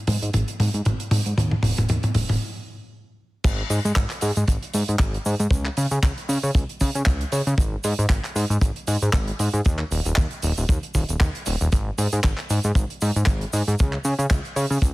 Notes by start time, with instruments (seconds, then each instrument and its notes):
0.07 analog synth bass G#2, open hi-hat, mid tom
0.22 analog synth bass G#2, closed hi-hat
0.33 analog synth bass G#1, closed hi-hat, mid tom
0.48 closed hi-hat
0.60 analog synth bass G#2, open hi-hat, mid tom
0.74 analog synth bass G#2, closed hi-hat
0.85 analog synth bass G#1, closed hi-hat, mid tom
1.00 closed hi-hat
1.11 analog synth bass G#2, open hi-hat, mid tom
1.26 analog synth bass G#2, closed hi-hat
1.37 analog synth bass D#2, closed hi-hat, mid tom
1.51 mid tom
1.63 analog synth bass D#1, open hi-hat, mid tom
1.77 analog synth bass D#1, closed hi-hat, mid tom
1.89 analog synth bass D#2, closed hi-hat, mid tom
2.03 closed hi-hat, mid tom
2.14 analog synth bass D#1, open hi-hat, mid tom
2.29 analog synth bass D#1, open hi-hat, mid tom
3.44 analog synth bass G#1, kick, closed hi-hat, crash, shaker
3.70 analog synth bass G#2, open hi-hat, shaker
3.85 analog synth bass G#2, closed hi-hat, shaker
3.96 analog synth bass G#1, kick, clap, closed hi-hat, shaker
4.10 clap, closed hi-hat
4.21 analog synth bass G#2, open hi-hat, shaker
4.35 analog synth bass G#2, closed hi-hat, shaker
4.47 analog synth bass G#1, kick, closed hi-hat, shaker
4.62 closed hi-hat
4.74 analog synth bass G#2, open hi-hat, shaker
4.88 analog synth bass G#2, closed hi-hat, shaker
4.99 analog synth bass G#1, kick, clap, closed hi-hat, shaker
5.14 closed hi-hat
5.26 analog synth bass G#2, open hi-hat, shaker
5.39 analog synth bass G#2, closed hi-hat, shaker
5.50 analog synth bass C#2, kick, closed hi-hat, shaker
5.65 clap
5.77 analog synth bass C#3, open hi-hat, shaker
5.91 analog synth bass C#3, closed hi-hat, shaker
6.03 analog synth bass C#2, kick, clap, closed hi-hat, shaker
6.18 closed hi-hat
6.29 analog synth bass C#3, open hi-hat, shaker
6.43 analog synth bass C#3, open hi-hat, shaker
6.55 analog synth bass C#2, kick, closed hi-hat, shaker
6.69 closed hi-hat
6.80 analog synth bass C#3, kick, open hi-hat, shaker
6.95 analog synth bass C#3, closed hi-hat, shaker
7.06 analog synth bass C#2, kick, clap, closed hi-hat, shaker
7.21 closed hi-hat
7.32 analog synth bass C#3, open hi-hat, shaker
7.47 analog synth bass C#3, closed hi-hat, shaker
7.58 analog synth bass G#1, kick, closed hi-hat, shaker
7.84 analog synth bass G#2, open hi-hat, shaker
7.99 analog synth bass G#2, closed hi-hat, shaker
8.09 analog synth bass G#1, kick, clap, closed hi-hat, shaker
8.24 clap, closed hi-hat
8.35 analog synth bass G#2, open hi-hat, shaker
8.50 analog synth bass G#2, closed hi-hat, shaker
8.61 analog synth bass G#1, kick, closed hi-hat, shaker
8.76 closed hi-hat
8.87 analog synth bass G#2, open hi-hat, shaker
9.02 analog synth bass G#2, closed hi-hat, shaker
9.13 analog synth bass G#1, kick, clap, closed hi-hat, shaker
9.28 closed hi-hat
9.39 analog synth bass G#2, open hi-hat, shaker
9.53 analog synth bass G#2, closed hi-hat, shaker
9.65 analog synth bass D#2, kick, closed hi-hat, shaker
9.79 clap
9.91 analog synth bass D#1, open hi-hat, shaker
10.05 analog synth bass D#1, closed hi-hat, shaker
10.16 analog synth bass D#2, kick, clap, closed hi-hat, shaker
10.31 closed hi-hat
10.42 analog synth bass D#1, open hi-hat, shaker
10.57 analog synth bass D#1, open hi-hat, shaker
10.69 analog synth bass D#2, kick, closed hi-hat, shaker
10.83 closed hi-hat
10.94 analog synth bass D#1, kick, open hi-hat, shaker
11.09 analog synth bass D#1, closed hi-hat, shaker
11.20 analog synth bass D#2, kick, clap, closed hi-hat, shaker
11.35 closed hi-hat
11.46 analog synth bass D#1, open hi-hat, shaker
11.61 analog synth bass D#1, closed hi-hat, shaker
11.72 analog synth bass G#1, kick, closed hi-hat, shaker
11.98 analog synth bass G#2, open hi-hat, shaker
12.12 analog synth bass G#2, closed hi-hat, shaker
12.23 analog synth bass G#1, kick, clap, closed hi-hat, shaker
12.37 clap, closed hi-hat
12.50 analog synth bass G#2, open hi-hat, shaker
12.64 analog synth bass G#2, closed hi-hat, shaker
12.75 analog synth bass G#1, kick, closed hi-hat, shaker
12.90 closed hi-hat
13.01 analog synth bass G#2, open hi-hat, shaker
13.16 analog synth bass G#2, closed hi-hat, shaker
13.26 analog synth bass G#1, kick, clap, closed hi-hat, shaker
13.41 closed hi-hat
13.53 analog synth bass G#2, open hi-hat, shaker
13.68 analog synth bass G#2, closed hi-hat, shaker
13.79 analog synth bass C#2, kick, closed hi-hat, shaker
13.93 clap
14.05 analog synth bass C#3, open hi-hat, shaker
14.19 analog synth bass C#3, closed hi-hat, shaker
14.31 analog synth bass C#2, kick, clap, closed hi-hat, shaker
14.45 closed hi-hat
14.56 analog synth bass C#3, open hi-hat, shaker
14.70 analog synth bass C#3, open hi-hat, shaker
14.82 analog synth bass C#2, kick, closed hi-hat, shaker